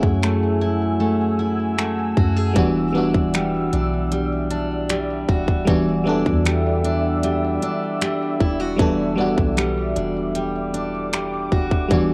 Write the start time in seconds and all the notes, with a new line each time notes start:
Already playing: F#3 A3 C#4 E4 F#4 G#4 F#5 G#5 E6
0.03 F#2, kick
0.22 A3, finger snap
0.61 E4
1.00 A3
1.39 E4
1.78 A3, finger snap
2.17 F#2 F#4, kick
2.36 G#4
2.54 E1 E3 G3 B3 D4 D5 E5, kick, closed hi-hat
2.59 F#4
2.93 G3 B3 D4
2.98 F#4
3.14 E1, kick
3.34 G3, finger snap, closed hi-hat
3.73 B1 D4, closed hi-hat
4.12 G3, closed hi-hat
4.51 D4, closed hi-hat
4.89 G3, finger snap, closed hi-hat
5.29 E1 F#4, kick
5.48 E1, kick
5.65 E1 E3 G3 B3 D4, kick, closed hi-hat
5.70 F#4
6.04 G3 B3 D4
6.09 A4
6.26 E2, kick
6.45 G3, finger snap, closed hi-hat
6.85 D4, closed hi-hat
7.23 G3, closed hi-hat
7.62 D4, closed hi-hat
8.01 G3, finger snap, closed hi-hat
8.40 E1 E4, kick
8.60 F#4
8.76 E1 E3 G3 B3 D4 D6, kick, closed hi-hat
8.82 A4
9.16 G3 B3 D4
9.20 F#4
9.38 B1, kick
9.57 G3, finger snap, closed hi-hat
9.96 E1 D4, closed hi-hat
10.35 G3, closed hi-hat
10.74 D4, closed hi-hat
11.13 G3, finger snap, closed hi-hat
11.52 E1 F#4, kick
11.71 E1, kick
11.89 E1 E3 G3 B3 D4, kick, closed hi-hat
11.93 F#4